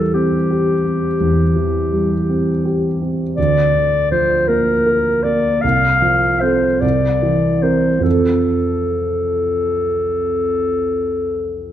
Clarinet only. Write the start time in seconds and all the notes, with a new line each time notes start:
Already playing: A4
0.14 G4
3.37 D5
4.11 C5
4.48 A#4
5.23 D5
5.61 F5
6.40 C5
6.81 D5
7.62 C5
8.03 A4